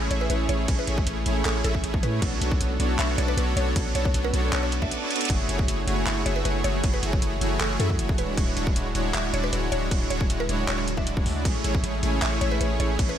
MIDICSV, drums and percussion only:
0, 0, Header, 1, 2, 480
1, 0, Start_track
1, 0, Key_signature, 3, "major"
1, 0, Tempo, 384615
1, 852, Time_signature, 4, 2, 24, 8
1, 16450, End_track
2, 0, Start_track
2, 0, Title_t, "Drums"
2, 133, Note_on_c, 9, 42, 69
2, 257, Note_off_c, 9, 42, 0
2, 372, Note_on_c, 9, 42, 75
2, 496, Note_off_c, 9, 42, 0
2, 611, Note_on_c, 9, 42, 59
2, 736, Note_off_c, 9, 42, 0
2, 852, Note_on_c, 9, 42, 77
2, 852, Note_on_c, 9, 49, 49
2, 853, Note_on_c, 9, 36, 117
2, 976, Note_off_c, 9, 42, 0
2, 976, Note_off_c, 9, 49, 0
2, 978, Note_off_c, 9, 36, 0
2, 1091, Note_on_c, 9, 42, 66
2, 1216, Note_off_c, 9, 42, 0
2, 1220, Note_on_c, 9, 36, 104
2, 1331, Note_on_c, 9, 42, 86
2, 1345, Note_off_c, 9, 36, 0
2, 1456, Note_off_c, 9, 42, 0
2, 1571, Note_on_c, 9, 42, 61
2, 1696, Note_off_c, 9, 42, 0
2, 1812, Note_on_c, 9, 39, 116
2, 1812, Note_on_c, 9, 42, 76
2, 1812, Note_on_c, 9, 49, 42
2, 1937, Note_off_c, 9, 39, 0
2, 1937, Note_off_c, 9, 42, 0
2, 1937, Note_off_c, 9, 49, 0
2, 2052, Note_on_c, 9, 42, 67
2, 2177, Note_off_c, 9, 42, 0
2, 2180, Note_on_c, 9, 36, 65
2, 2293, Note_on_c, 9, 42, 77
2, 2304, Note_off_c, 9, 36, 0
2, 2417, Note_off_c, 9, 42, 0
2, 2419, Note_on_c, 9, 36, 107
2, 2534, Note_on_c, 9, 42, 63
2, 2544, Note_off_c, 9, 36, 0
2, 2659, Note_off_c, 9, 42, 0
2, 2772, Note_on_c, 9, 36, 115
2, 2773, Note_on_c, 9, 42, 79
2, 2773, Note_on_c, 9, 49, 47
2, 2897, Note_off_c, 9, 36, 0
2, 2897, Note_off_c, 9, 42, 0
2, 2897, Note_off_c, 9, 49, 0
2, 3014, Note_on_c, 9, 42, 71
2, 3139, Note_off_c, 9, 42, 0
2, 3139, Note_on_c, 9, 36, 107
2, 3252, Note_on_c, 9, 42, 83
2, 3264, Note_off_c, 9, 36, 0
2, 3377, Note_off_c, 9, 42, 0
2, 3492, Note_on_c, 9, 42, 69
2, 3617, Note_off_c, 9, 42, 0
2, 3731, Note_on_c, 9, 39, 117
2, 3731, Note_on_c, 9, 42, 83
2, 3731, Note_on_c, 9, 49, 42
2, 3856, Note_off_c, 9, 39, 0
2, 3856, Note_off_c, 9, 42, 0
2, 3856, Note_off_c, 9, 49, 0
2, 3972, Note_on_c, 9, 42, 75
2, 4096, Note_off_c, 9, 42, 0
2, 4213, Note_on_c, 9, 42, 76
2, 4337, Note_off_c, 9, 42, 0
2, 4453, Note_on_c, 9, 42, 67
2, 4578, Note_off_c, 9, 42, 0
2, 4691, Note_on_c, 9, 42, 81
2, 4691, Note_on_c, 9, 49, 45
2, 4692, Note_on_c, 9, 36, 116
2, 4816, Note_off_c, 9, 42, 0
2, 4816, Note_off_c, 9, 49, 0
2, 4817, Note_off_c, 9, 36, 0
2, 4929, Note_on_c, 9, 42, 69
2, 5054, Note_off_c, 9, 42, 0
2, 5059, Note_on_c, 9, 36, 100
2, 5170, Note_on_c, 9, 42, 87
2, 5184, Note_off_c, 9, 36, 0
2, 5295, Note_off_c, 9, 42, 0
2, 5411, Note_on_c, 9, 42, 66
2, 5536, Note_off_c, 9, 42, 0
2, 5652, Note_on_c, 9, 39, 120
2, 5652, Note_on_c, 9, 42, 89
2, 5652, Note_on_c, 9, 49, 38
2, 5776, Note_off_c, 9, 39, 0
2, 5776, Note_off_c, 9, 42, 0
2, 5776, Note_off_c, 9, 49, 0
2, 5893, Note_on_c, 9, 42, 74
2, 6018, Note_off_c, 9, 42, 0
2, 6019, Note_on_c, 9, 36, 65
2, 6133, Note_on_c, 9, 42, 79
2, 6144, Note_off_c, 9, 36, 0
2, 6258, Note_off_c, 9, 42, 0
2, 6372, Note_on_c, 9, 42, 59
2, 6435, Note_off_c, 9, 42, 0
2, 6435, Note_on_c, 9, 42, 68
2, 6498, Note_off_c, 9, 42, 0
2, 6498, Note_on_c, 9, 42, 78
2, 6554, Note_off_c, 9, 42, 0
2, 6554, Note_on_c, 9, 42, 87
2, 6611, Note_on_c, 9, 36, 118
2, 6612, Note_off_c, 9, 42, 0
2, 6612, Note_on_c, 9, 42, 79
2, 6612, Note_on_c, 9, 49, 47
2, 6735, Note_off_c, 9, 36, 0
2, 6736, Note_off_c, 9, 42, 0
2, 6736, Note_off_c, 9, 49, 0
2, 6853, Note_on_c, 9, 42, 71
2, 6977, Note_off_c, 9, 42, 0
2, 6978, Note_on_c, 9, 36, 105
2, 7093, Note_on_c, 9, 42, 86
2, 7103, Note_off_c, 9, 36, 0
2, 7218, Note_off_c, 9, 42, 0
2, 7332, Note_on_c, 9, 42, 66
2, 7457, Note_off_c, 9, 42, 0
2, 7572, Note_on_c, 9, 39, 122
2, 7572, Note_on_c, 9, 42, 84
2, 7572, Note_on_c, 9, 49, 39
2, 7696, Note_off_c, 9, 39, 0
2, 7696, Note_off_c, 9, 42, 0
2, 7696, Note_off_c, 9, 49, 0
2, 7811, Note_on_c, 9, 42, 73
2, 7936, Note_off_c, 9, 42, 0
2, 8052, Note_on_c, 9, 42, 81
2, 8176, Note_off_c, 9, 42, 0
2, 8291, Note_on_c, 9, 42, 66
2, 8416, Note_off_c, 9, 42, 0
2, 8531, Note_on_c, 9, 42, 76
2, 8531, Note_on_c, 9, 49, 45
2, 8532, Note_on_c, 9, 36, 127
2, 8656, Note_off_c, 9, 36, 0
2, 8656, Note_off_c, 9, 42, 0
2, 8656, Note_off_c, 9, 49, 0
2, 8772, Note_on_c, 9, 42, 66
2, 8896, Note_off_c, 9, 42, 0
2, 8899, Note_on_c, 9, 36, 113
2, 9011, Note_on_c, 9, 42, 79
2, 9024, Note_off_c, 9, 36, 0
2, 9136, Note_off_c, 9, 42, 0
2, 9252, Note_on_c, 9, 42, 62
2, 9377, Note_off_c, 9, 42, 0
2, 9491, Note_on_c, 9, 39, 126
2, 9491, Note_on_c, 9, 42, 77
2, 9491, Note_on_c, 9, 49, 39
2, 9616, Note_off_c, 9, 39, 0
2, 9616, Note_off_c, 9, 42, 0
2, 9616, Note_off_c, 9, 49, 0
2, 9730, Note_on_c, 9, 42, 74
2, 9855, Note_off_c, 9, 42, 0
2, 9859, Note_on_c, 9, 36, 73
2, 9971, Note_on_c, 9, 42, 81
2, 9984, Note_off_c, 9, 36, 0
2, 10095, Note_off_c, 9, 42, 0
2, 10099, Note_on_c, 9, 36, 114
2, 10210, Note_on_c, 9, 42, 63
2, 10224, Note_off_c, 9, 36, 0
2, 10335, Note_off_c, 9, 42, 0
2, 10451, Note_on_c, 9, 36, 127
2, 10452, Note_on_c, 9, 42, 75
2, 10452, Note_on_c, 9, 49, 47
2, 10576, Note_off_c, 9, 36, 0
2, 10577, Note_off_c, 9, 42, 0
2, 10577, Note_off_c, 9, 49, 0
2, 10691, Note_on_c, 9, 42, 62
2, 10816, Note_off_c, 9, 42, 0
2, 10819, Note_on_c, 9, 36, 112
2, 10932, Note_on_c, 9, 42, 81
2, 10943, Note_off_c, 9, 36, 0
2, 11057, Note_off_c, 9, 42, 0
2, 11170, Note_on_c, 9, 42, 62
2, 11295, Note_off_c, 9, 42, 0
2, 11412, Note_on_c, 9, 39, 126
2, 11412, Note_on_c, 9, 42, 80
2, 11412, Note_on_c, 9, 49, 41
2, 11537, Note_off_c, 9, 39, 0
2, 11537, Note_off_c, 9, 42, 0
2, 11537, Note_off_c, 9, 49, 0
2, 11652, Note_on_c, 9, 42, 67
2, 11777, Note_off_c, 9, 42, 0
2, 11891, Note_on_c, 9, 42, 81
2, 12016, Note_off_c, 9, 42, 0
2, 12132, Note_on_c, 9, 42, 63
2, 12257, Note_off_c, 9, 42, 0
2, 12371, Note_on_c, 9, 36, 127
2, 12373, Note_on_c, 9, 42, 72
2, 12373, Note_on_c, 9, 49, 48
2, 12496, Note_off_c, 9, 36, 0
2, 12497, Note_off_c, 9, 42, 0
2, 12497, Note_off_c, 9, 49, 0
2, 12611, Note_on_c, 9, 42, 65
2, 12736, Note_off_c, 9, 42, 0
2, 12739, Note_on_c, 9, 36, 109
2, 12853, Note_on_c, 9, 42, 76
2, 12864, Note_off_c, 9, 36, 0
2, 12978, Note_off_c, 9, 42, 0
2, 13093, Note_on_c, 9, 42, 64
2, 13218, Note_off_c, 9, 42, 0
2, 13333, Note_on_c, 9, 39, 122
2, 13333, Note_on_c, 9, 42, 75
2, 13333, Note_on_c, 9, 49, 43
2, 13458, Note_off_c, 9, 39, 0
2, 13458, Note_off_c, 9, 42, 0
2, 13458, Note_off_c, 9, 49, 0
2, 13573, Note_on_c, 9, 42, 67
2, 13698, Note_off_c, 9, 42, 0
2, 13699, Note_on_c, 9, 36, 71
2, 13812, Note_on_c, 9, 42, 74
2, 13824, Note_off_c, 9, 36, 0
2, 13937, Note_off_c, 9, 42, 0
2, 13939, Note_on_c, 9, 36, 113
2, 14051, Note_on_c, 9, 46, 64
2, 14064, Note_off_c, 9, 36, 0
2, 14176, Note_off_c, 9, 46, 0
2, 14291, Note_on_c, 9, 36, 127
2, 14292, Note_on_c, 9, 42, 72
2, 14292, Note_on_c, 9, 49, 48
2, 14416, Note_off_c, 9, 36, 0
2, 14417, Note_off_c, 9, 42, 0
2, 14417, Note_off_c, 9, 49, 0
2, 14531, Note_on_c, 9, 42, 66
2, 14656, Note_off_c, 9, 42, 0
2, 14659, Note_on_c, 9, 36, 111
2, 14773, Note_on_c, 9, 42, 78
2, 14783, Note_off_c, 9, 36, 0
2, 14897, Note_off_c, 9, 42, 0
2, 15013, Note_on_c, 9, 42, 62
2, 15138, Note_off_c, 9, 42, 0
2, 15252, Note_on_c, 9, 39, 126
2, 15252, Note_on_c, 9, 42, 79
2, 15252, Note_on_c, 9, 49, 41
2, 15377, Note_off_c, 9, 39, 0
2, 15377, Note_off_c, 9, 42, 0
2, 15377, Note_off_c, 9, 49, 0
2, 15492, Note_on_c, 9, 42, 65
2, 15616, Note_off_c, 9, 42, 0
2, 15734, Note_on_c, 9, 42, 73
2, 15858, Note_off_c, 9, 42, 0
2, 15973, Note_on_c, 9, 42, 64
2, 16098, Note_off_c, 9, 42, 0
2, 16212, Note_on_c, 9, 36, 119
2, 16213, Note_on_c, 9, 42, 73
2, 16213, Note_on_c, 9, 49, 49
2, 16337, Note_off_c, 9, 36, 0
2, 16338, Note_off_c, 9, 42, 0
2, 16338, Note_off_c, 9, 49, 0
2, 16450, End_track
0, 0, End_of_file